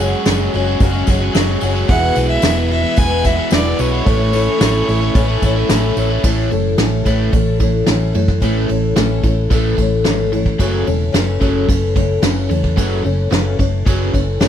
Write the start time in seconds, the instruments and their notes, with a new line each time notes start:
Already playing: fingered electric bass F#1, overdriven electric guitar F#3, upright piano F#4 G#4 C#5
0.00 overdriven electric guitar G#3 C#4 F#4, twelve-string acoustic guitar G#3 C#4 F#4 G#4
0.25 fingered electric bass F#1, overdriven electric guitar F#3 G#3 C#4 F#4, twelve-string acoustic guitar G#3 C#4 F#4 G#4, snare, open hi-hat, tambourine
0.52 fingered electric bass F#1, overdriven electric guitar F#3 G#3 C#4 F#4, twelve-string acoustic guitar C#4 F#4 G#4, open hi-hat
0.56 twelve-string acoustic guitar G#3
0.66 overdriven electric guitar G#3 C#4 F#4
0.80 fingered electric bass F#1, twelve-string acoustic guitar F#2 C#3 G#3 C#4 F#4 G#4, kick, open hi-hat, tambourine
0.92 overdriven electric guitar G#3 C#4 F#4
1.06 fingered electric bass F#1, overdriven electric guitar F#3 G#3 C#4 F#4, twelve-string acoustic guitar C#4 F#4 G#4, kick, snare, open hi-hat, tambourine
1.11 twelve-string acoustic guitar G#3
1.20 overdriven electric guitar G#3 C#4 F#4
1.33 fingered electric bass F#1, overdriven electric guitar F#3 G#3 C#4 F#4, twelve-string acoustic guitar G#3 C#4, snare, open hi-hat, tambourine
1.38 twelve-string acoustic guitar F#4 G#4
1.61 fingered electric bass F#1, overdriven electric guitar F#3 G#3 C#4 F#4, twelve-string acoustic guitar C#4 F#4 G#4, open hi-hat, tambourine
1.65 twelve-string acoustic guitar G#3
1.75 overdriven electric guitar G#3 C#4 F#4
1.88 fingered electric bass E1, overdriven electric guitar E2 B2 E3 G#3 B3 E4, twelve-string acoustic guitar E3 G#3 B3 E4 F#4, upright piano F#4 G#4 E5, fiddle F#5, kick, open hi-hat, tambourine
2.02 overdriven electric guitar E3 G#3 B3 E4
2.15 fingered electric bass B1, overdriven electric guitar E3 G#3 B3 E4, twelve-string acoustic guitar E4 F#4, open hi-hat, tambourine
2.20 twelve-string acoustic guitar B3
2.29 fiddle E5
2.42 fingered electric bass E1, overdriven electric guitar E2 B2 E3 G#3 B3 E4, twelve-string acoustic guitar G#3 B3 E4, snare, open hi-hat, tambourine
2.47 twelve-string acoustic guitar F#4
2.69 overdriven electric guitar E3 G#3 B3 E4, twelve-string acoustic guitar E4 F#4, fiddle E5, open hi-hat
2.74 twelve-string acoustic guitar B3
2.83 overdriven electric guitar E3 G#3 B3 E4
2.96 fingered electric bass E1, twelve-string acoustic guitar E3 G#3 B3 E4 F#4, fiddle G#5, kick, open hi-hat, tambourine
3.10 overdriven electric guitar E3 G#3 B3 E4
3.23 overdriven electric guitar E3 G#3 B3 E4, twelve-string acoustic guitar E4 F#4, fiddle E5, kick, snare, open hi-hat, tambourine
3.28 twelve-string acoustic guitar B3
3.37 overdriven electric guitar E3 G#3 B3 E4
3.51 fingered electric bass E1, overdriven electric guitar E2 B2 E3 G#3 B3 E4, twelve-string acoustic guitar G#3 B3 E4, snare, open hi-hat, tambourine
3.55 twelve-string acoustic guitar F#4, fiddle D5
3.78 fingered electric bass B1, overdriven electric guitar E3 G#3 B3 E4, twelve-string acoustic guitar E4 F#4, fiddle C#5, open hi-hat, tambourine
3.82 twelve-string acoustic guitar B3
3.92 overdriven electric guitar E3 G#3 B3 E4
4.04 fingered electric bass A1, overdriven electric guitar A2 E3 A3 C#4, twelve-string acoustic guitar A2 E3 A3, upright piano E4 A4 C#5, kick, open hi-hat
4.08 twelve-string acoustic guitar C#4 E4 A4, overdriven electric guitar E4
4.19 overdriven electric guitar A3 C#4 E4
4.32 overdriven electric guitar E3 A3 C#4 E4, twelve-string acoustic guitar E4 A4, open hi-hat, tambourine
4.37 twelve-string acoustic guitar A3 C#4
4.59 fingered electric bass A1, overdriven electric guitar A2 E3 A3 C#4 E4, twelve-string acoustic guitar A3 C#4 E4, snare, open hi-hat, tambourine
4.63 twelve-string acoustic guitar A4
4.87 fingered electric bass A1, overdriven electric guitar E3 A3 C#4 E4, twelve-string acoustic guitar C#4 E4 A4, open hi-hat, tambourine
4.91 twelve-string acoustic guitar A3
5.01 overdriven electric guitar A3 C#4 E4
5.14 fingered electric bass A1, twelve-string acoustic guitar A2 E3 A3 C#4 E4 A4, kick, open hi-hat, tambourine
5.28 overdriven electric guitar A3 C#4 E4
5.42 fingered electric bass A1, overdriven electric guitar E3 A3 C#4 E4, twelve-string acoustic guitar C#4 E4 A4, kick, open hi-hat, tambourine
5.46 twelve-string acoustic guitar A3
5.56 overdriven electric guitar A3 C#4 E4
5.69 fingered electric bass A1, overdriven electric guitar A2 E3 A3 C#4 E4, twelve-string acoustic guitar A3 C#4 E4 A4, snare, open hi-hat, tambourine
5.96 fingered electric bass A1, overdriven electric guitar E3 A3 C#4 E4, twelve-string acoustic guitar A3 C#4 E4 A4, open hi-hat, tambourine
6.10 overdriven electric guitar A3 C#4 E4
6.23 fingered electric bass A1, twelve-string acoustic guitar A2 E3 A3 C#4 E4 A4, overdriven electric guitar A2 E3 A3, kick, ride
6.51 fingered electric bass F#1, overdriven electric guitar A2 E3, twelve-string acoustic guitar A3 C#4 E4 A4, ride
6.78 fingered electric bass A1, twelve-string acoustic guitar A2 E3 A3 C#4 E4 A4, overdriven electric guitar A2 E3, snare, ride
7.04 fingered electric bass A1, overdriven electric guitar A2 E3 A3, twelve-string acoustic guitar A3 C#4 E4 A4, kick, ride
7.32 fingered electric bass A1, overdriven electric guitar A2 E3, twelve-string acoustic guitar A3 C#4 E4 A4, kick, ride
7.59 overdriven electric guitar A2 E3, twelve-string acoustic guitar A3 C#4 E4 A4, kick, ride
7.86 fingered electric bass A1, twelve-string acoustic guitar A2 E3 A3 C#4 E4 A4, overdriven electric guitar A2 E3, snare, ride
8.13 fingered electric bass F#2, overdriven electric guitar A2 E3, twelve-string acoustic guitar C#4 E4 A4, ride
8.17 twelve-string acoustic guitar A3
8.28 kick, snare
8.40 fingered electric bass A1, twelve-string acoustic guitar A2 E3 A3 C#4 E4 A4, overdriven electric guitar A2 E3, kick, ride
8.44 overdriven electric guitar A3
8.68 fingered electric bass A1, overdriven electric guitar A2 E3, twelve-string acoustic guitar A3 C#4 E4 A4, ride
8.96 fingered electric bass A1, twelve-string acoustic guitar A2 E3 A3 C#4 E4 A4, overdriven electric guitar A2 E3, snare, ride
9.23 fingered electric bass A1, overdriven electric guitar A2 E3, twelve-string acoustic guitar A3 C#4 E4 A4, kick, ride
9.50 fingered electric bass A1, overdriven electric guitar A2 E3 A3, twelve-string acoustic guitar A3 C#4 E4 A4, kick, ride
9.77 fingered electric bass A1, overdriven electric guitar A2 E3, twelve-string acoustic guitar E4 A4, kick, ride
9.82 twelve-string acoustic guitar A3 C#4
10.04 fingered electric bass G#1, overdriven electric guitar A2 E3, twelve-string acoustic guitar A2 E3 A3 C#4 E4 A4, snare, ride
10.32 overdriven electric guitar A2 E3, twelve-string acoustic guitar A3 C#4 E4 A4, ride
10.46 kick
10.59 fingered electric bass F#1, overdriven electric guitar F#2 C#3 F#3, twelve-string acoustic guitar F#2 C#3 E3 A3 C#4 A4, kick, ride
10.86 fingered electric bass E1, overdriven electric guitar F#2 C#3, twelve-string acoustic guitar E3 A3 C#4 A4, ride
11.13 fingered electric bass F#1, twelve-string acoustic guitar F#2 C#3 E3 A3 C#4 A4, overdriven electric guitar F#2 C#3, snare, ride
11.40 fingered electric bass F#1, overdriven electric guitar F#2 C#3 F#3, twelve-string acoustic guitar E3 A3 C#4 A4, kick, ride
11.66 fingered electric bass F#1, overdriven electric guitar F#2 C#3, twelve-string acoustic guitar E3 A3 C#4, kick, ride
11.70 twelve-string acoustic guitar A4
11.95 overdriven electric guitar F#2 C#3, twelve-string acoustic guitar E3 A3 C#4 A4, kick, ride
12.22 fingered electric bass F#1, twelve-string acoustic guitar F#2 C#3 E3 A3 C#4 A4, overdriven electric guitar F#2 C#3, snare, ride
12.48 fingered electric bass E2, overdriven electric guitar F#2 C#3, twelve-string acoustic guitar A3 C#4 A4, ride
12.52 twelve-string acoustic guitar E3
12.64 kick
12.76 fingered electric bass F#1, twelve-string acoustic guitar F#2 C#3 E3 A3 C#4 A4, overdriven electric guitar F#2 C#3 F#3, kick, ride
13.04 fingered electric bass F#1, overdriven electric guitar F#2 C#3, twelve-string acoustic guitar A3 C#4 A4, ride
13.08 twelve-string acoustic guitar E3
13.30 fingered electric bass F#1, twelve-string acoustic guitar F#2 C#3 E3 A3 C#4 A4, overdriven electric guitar F#2 C#3, snare, ride
13.58 fingered electric bass F#1, overdriven electric guitar F#2 C#3, twelve-string acoustic guitar E3 A3 C#4 A4, kick, ride
13.85 fingered electric bass F#1, overdriven electric guitar F#2 C#3 F#3, twelve-string acoustic guitar E3 A3 C#4 A4, kick, ride
14.13 fingered electric bass F#1, overdriven electric guitar F#2 C#3, twelve-string acoustic guitar E3 A3 C#4 A4, kick, ride
14.40 fingered electric bass F#1, twelve-string acoustic guitar F#2 C#3 E3 A3 C#4 A4, overdriven electric guitar F#2 C#3, snare, ride